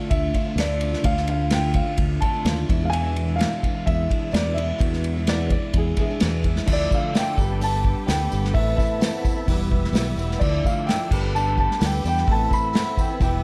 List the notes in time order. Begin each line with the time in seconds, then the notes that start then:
Already playing: D3 A3 D4 F4 F5
0.10 D2 E5, kick, ride
0.33 D3 A3 D4 F4, kick, ride
0.45 A3 D4 F4
0.56 D2 D3 A3 D4 F4, snare, ride
0.60 D5
0.81 D3 A3 D4 F4, ride
0.93 A3 D4 F4, snare
1.03 D2 D3 A3 D4 F4 F5, kick, ride
1.17 snare
1.28 F5, ride
1.40 A3 D4 F4
1.50 D3 A3 D4 F4 G5, snare, ride
1.72 D3 A3 D4 F4 F5, kick, ride
1.84 A3 D4 F4
1.98 D2, kick, ride
2.20 D3 A3 D4 F4 A5, kick, ride
2.34 A3 D4 F4
2.45 D#2 D3 A3 D4 F4, snare, ride
2.68 E2 B2 E3 G#3 D4 E4, kick, ride
2.81 E3 G#3 D4 E4
2.85 F5
2.90 E2 B2 E3 G#3 D4 E4 G#5, ride
3.16 ride
3.27 E3 G#3 D4 E4
3.36 E2 B2 E3 G#3 D4 F5
3.40 E4, snare, ride
3.62 E3 G#3 D4 E4, kick, ride
3.73 E3 G#3 D4 E4
3.86 E2 B2 E3 G#3 D4 E4 E5, kick, ride
4.08 E2 B2 E3 G#3 D4 E4, kick, ride
4.19 E3 G#3 D4 E4
4.31 E2 B2 E3 G#3 D4 E4 D5, ride
4.35 snare
4.54 E2 B2 E3 G#3 D4 E4 E5, ride
4.67 E3 G#3 D4 E4
4.78 E2 B2 E3 G#3 D4 E4, kick, ride
4.93 snare
5.04 ride
5.17 E3 G#3 D4 E4
5.27 E2 B2 E3 G#3 D4 E4 D5, snare, ride
5.47 C#5, kick, ride
5.52 E3 G#3 D4 E4 D5
5.73 E2 B2 E3 G#3 D4 E4 G#4, kick, ride
5.97 E2 B2 E3 G#3 D4 E4 G#4, kick, ride
6.10 E3 G#3 D4 E4
6.20 E2 B2 E3 G#3 D4 E4, snare, ride
6.42 E3 G#3 D4 E4, kick, ride
6.55 E3 G#3 D4 E4, snare
6.65 D2 D3 F3 A3 D4 E4, kick, crash
6.70 E4 A4 D5 E5 D6 E6
6.89 F3 A3 D4 E4, kick, tambourine
6.94 F5
7.14 D3 F3 A3 D4 E4 G5, snare, open hi-hat, tambourine
7.37 G1 G3 B3 D4 G4 A4 B4 G5 B5, kick, tambourine
7.51 B3 D4 A4
7.60 G3 B3 D4 A4 A5, open hi-hat, tambourine
7.74 B3 D4 A4
7.84 G3 B3 D4 A4, kick
8.07 D2 G3 B3 D4 A4 G5, snare, open hi-hat, tambourine
8.19 B3 D4 A4
8.29 G1 G3 B3 D4 A4, tambourine
8.34 A4
8.44 snare
8.54 A1 A2 E3 B3 C4 E4 A4 E5 A5, kick, open hi-hat
8.59 B4
8.76 E3 C4 E4 E5, kick, tambourine
8.80 B3 E4
9.00 A2 E3 B3 C4 E4, snare, open hi-hat, tambourine
9.24 E3 B3 C4 E4, kick, tambourine
9.34 B3 C4 E4
9.47 E1 E2 B2 E3 G3 B3 E4 G4 E6, kick, open hi-hat, tambourine
9.51 B4
9.60 E3 G3 B3 E4
9.69 E3 G3 B3 E4, kick
9.74 E3
9.84 snare
9.93 B1 E2 B2 E3 G3 B3 E4, snare, open hi-hat, tambourine
9.97 B3
10.05 E3 G3 B3 E4
10.16 E1 E3 G3 B3 E4, tambourine
10.22 E3
10.31 snare
10.39 D2 D3 F3 A3 D4 E4 A4 D5 E5 D6, kick, crash
10.63 F3 A3 D4 E4 F5, kick, tambourine
10.86 D3 F3 A3 D4 E4 G5, snare, open hi-hat
10.90 tambourine
11.11 G1 G3 B3 D4 G4 A4 B4 G5 B5, kick, crash
11.23 B3 D4 A4
11.35 G3 B3 D4 A4 A5, tambourine
11.46 B3 D4 A4
11.57 G3 B3 D4 A4 A5, kick
11.71 snare
11.79 D2 G3 B3 D4 A4, snare, open hi-hat, tambourine
11.84 G5
11.91 B3 D4 A4
12.03 E2 G3 B3 D4 A4, tambourine
12.07 G5
12.17 snare
12.25 A1 A2 E3 B3 C4 E4 B4 E6, kick, open hi-hat
12.30 A4 B4 A5
12.48 E3 B3 C4 E4, kick
12.53 C4 B5, tambourine
12.73 A2 E3 B3 C4 E4, snare, open hi-hat, tambourine
12.98 E3 B3 C4 E4 G5, kick, tambourine
13.09 B3 C4 E4
13.20 E1 E2 B2 E3 G3 B3 E4 G4 B4 E5 G5, kick, open hi-hat, tambourine
13.32 E3 G3 B3 E4